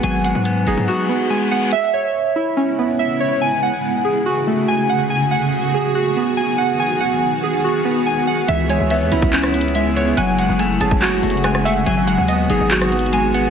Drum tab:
HH |x-----x-----x-----x-----------------------------|------------------------------------------------|------------------------------------------------|------------------------------------------------|
CP |------------------------------------------------|------------------------------------------------|------------------------------------------------|------------------------------------------------|
SD |------------------------------------------------|------------------------------------------------|------------------------------------------------|------------------------------------------------|
BD |------------------------------------------------|------------------------------------------------|------------------------------------------------|------------------------------------------------|

HH |------------------------------------------------|x-----x-----x-----x-----x-----x-x-x-x-----x-----|x-----x-----x-----x-----x-----x-x-x-x-----o-----|x-----x-----x-----x-----x-----x-x-x-x-----x-----|
CP |------------------------------------------------|------------------------x-----------------------|------------------------x-----------------------|------------------------x-----------------------|
SD |------------------------------------------------|---------------------------r--------------------|------------------------------------r--r--------|---------------------------r--------------------|
BD |------------------------------------------------|---------------------o--------------------------|---------------------o--------------------------|------------------------------------------------|